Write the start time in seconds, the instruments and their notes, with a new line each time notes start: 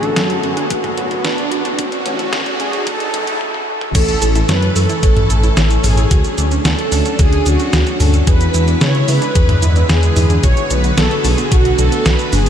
Already playing: detuned saw bass A1, analog synth pad D3 F#3 B3 F#4, analog polysynth A4, riser
0.03 synth arpeggio sound D4, closed hi-hat
0.16 detuned saw bass F#2, synth arpeggio sound B4, snare, closed hi-hat
0.30 closed hi-hat
0.43 detuned saw bass F#2, synth arpeggio sound F#4, analog polysynth G#4, closed hi-hat
0.57 synth arpeggio sound D4, closed hi-hat
0.70 detuned saw bass A1, analog polysynth F#4, synth arpeggio sound B4, kick, closed hi-hat
0.84 closed hi-hat, mid tom
0.97 detuned saw bass A1, synth arpeggio sound F#4, closed hi-hat
1.11 synth arpeggio sound D4, closed hi-hat
1.24 detuned saw bass A1, analog polysynth D4, synth arpeggio sound B4, snare, closed hi-hat
1.38 closed hi-hat
1.52 detuned saw bass A1, synth arpeggio sound F#4, closed hi-hat
1.65 synth arpeggio sound D4, closed hi-hat
1.78 detuned saw bass A1, analog synth pad C#3 F#3 A3 F#4, analog polysynth F#4, synth arpeggio sound F#4, kick, closed hi-hat
1.92 closed hi-hat
2.06 detuned saw bass A1, synth arpeggio sound C#4, closed hi-hat
2.19 synth arpeggio sound A3, closed hi-hat
2.33 detuned saw bass A1, synth arpeggio sound F#4, snare, closed hi-hat
2.46 closed hi-hat
2.60 detuned saw bass A1, synth arpeggio sound C#4, analog polysynth G#4, closed hi-hat
2.73 synth arpeggio sound A3, closed hi-hat
2.87 detuned saw bass A1, synth arpeggio sound F#4, analog polysynth A4, kick, closed hi-hat
3.00 closed hi-hat
3.14 detuned saw bass A1, synth arpeggio sound C#4, closed hi-hat
3.27 synth arpeggio sound A3, closed hi-hat
3.41 high tom
3.54 high tom
3.81 mid tom
3.95 detuned saw bass A1, analog synth pad E3 A3 C#4 E4, string machine A4, analog polysynth A4, synth arpeggio sound C#5, kick, closed hi-hat, crash, cabasa
4.08 closed hi-hat, cabasa
4.22 detuned saw bass A1, synth arpeggio sound A4, closed hi-hat, cabasa
4.35 synth arpeggio sound E4, closed hi-hat, cabasa
4.49 detuned saw bass F#2, string machine B4, analog polysynth B4, synth arpeggio sound C#5, snare, closed hi-hat, cabasa
4.62 closed hi-hat
4.76 detuned saw bass F#2, analog polysynth A4, string machine A4, synth arpeggio sound A4, open hi-hat, cabasa
4.90 synth arpeggio sound E4, closed hi-hat, cabasa
5.03 detuned saw bass A1, synth arpeggio sound C#5, kick, closed hi-hat, cabasa
5.17 closed hi-hat, mid tom
5.30 detuned saw bass A1, synth arpeggio sound A4, closed hi-hat, cabasa
5.44 synth arpeggio sound E4, closed hi-hat, cabasa
5.57 detuned saw bass A1, synth arpeggio sound C#5, snare, closed hi-hat, cabasa
5.70 closed hi-hat, cabasa
5.84 detuned saw bass A1, string machine G#4, analog polysynth G#4, synth arpeggio sound A4, open hi-hat, mid tom, cabasa
5.97 synth arpeggio sound E4, closed hi-hat, cabasa
6.11 detuned saw bass D2, analog synth pad F#3 D4, synth arpeggio sound F#4, kick, closed hi-hat, cabasa
6.25 closed hi-hat, cabasa
6.38 detuned saw bass D2, synth arpeggio sound D4, closed hi-hat, cabasa
6.52 synth arpeggio sound C#4, closed hi-hat, cabasa
6.65 detuned saw bass D2, synth arpeggio sound F#4, analog polysynth A4, string machine A4, snare, closed hi-hat, cabasa
6.79 closed hi-hat
6.92 detuned saw bass D2, synth arpeggio sound D4, open hi-hat, cabasa
7.06 synth arpeggio sound C#4, closed hi-hat, cabasa
7.19 detuned saw bass D2, synth arpeggio sound F#4, analog polysynth G#4, string machine G#4, kick, closed hi-hat, cabasa
7.33 closed hi-hat
7.46 detuned saw bass D2, synth arpeggio sound D4, analog polysynth F#4, string machine F#4, closed hi-hat, cabasa
7.60 synth arpeggio sound C#4, closed hi-hat, cabasa
7.73 detuned saw bass D2, synth arpeggio sound F#4, snare, closed hi-hat, cabasa
7.87 closed hi-hat, cabasa
8.00 detuned saw bass D2, synth arpeggio sound D4, analog polysynth A4, string machine A4, open hi-hat, mid tom, cabasa
8.14 synth arpeggio sound C#4, closed hi-hat, cabasa
8.27 detuned saw bass E2, analog synth pad D3 G#3 B3 E4, synth arpeggio sound G#4, analog polysynth B4, string machine B4, kick, closed hi-hat, cabasa
8.41 closed hi-hat, cabasa
8.54 detuned saw bass E2, synth arpeggio sound E4, closed hi-hat, cabasa
8.68 synth arpeggio sound D4, closed hi-hat, cabasa
8.81 detuned saw bass C#3, synth arpeggio sound G#4, analog polysynth C#5, string machine C#5, snare, closed hi-hat, cabasa
8.95 closed hi-hat
9.08 detuned saw bass C#3, synth arpeggio sound E4, analog polysynth B4, string machine B4, open hi-hat, cabasa
9.22 synth arpeggio sound D4, closed hi-hat, cabasa
9.35 detuned saw bass E2, synth arpeggio sound G#4, kick, closed hi-hat, cabasa
9.49 closed hi-hat, mid tom
9.62 detuned saw bass E2, synth arpeggio sound E4, closed hi-hat, cabasa
9.76 synth arpeggio sound D4, closed hi-hat, cabasa
9.89 detuned saw bass E2, synth arpeggio sound G#4, analog polysynth G#4, string machine G#4, snare, closed hi-hat, cabasa
10.03 closed hi-hat, cabasa
10.16 detuned saw bass E2, synth arpeggio sound E4, open hi-hat, mid tom, cabasa
10.30 synth arpeggio sound D4, closed hi-hat, cabasa
10.43 detuned saw bass B1, analog synth pad D3 A3 F#4, synth arpeggio sound F#4, analog polysynth C#5, string machine C#5, kick, closed hi-hat, cabasa
10.57 closed hi-hat, cabasa
10.70 detuned saw bass B1, synth arpeggio sound D4, analog polysynth B4, string machine B4, closed hi-hat, cabasa
10.84 synth arpeggio sound B3, closed hi-hat, cabasa
10.97 detuned saw bass B1, synth arpeggio sound F#4, analog polysynth A4, string machine A4, snare, closed hi-hat, cabasa
11.11 closed hi-hat
11.25 detuned saw bass B1, synth arpeggio sound D4, analog polysynth G#4, string machine G#4, open hi-hat, cabasa
11.38 synth arpeggio sound B3, closed hi-hat, cabasa
11.52 detuned saw bass B1, synth arpeggio sound F#4, analog polysynth F#4, string machine F#4, kick, closed hi-hat, cabasa
11.65 closed hi-hat
11.79 detuned saw bass B1, synth arpeggio sound D4, analog polysynth A4, string machine A4, closed hi-hat, cabasa
11.92 synth arpeggio sound B3, closed hi-hat, cabasa
12.06 detuned saw bass B1, synth arpeggio sound F#4, analog polysynth B4, string machine B4, snare, closed hi-hat, cabasa
12.19 closed hi-hat, cabasa
12.33 detuned saw bass F#1, synth arpeggio sound D4, analog polysynth G#4, string machine G#4, open hi-hat, mid tom, cabasa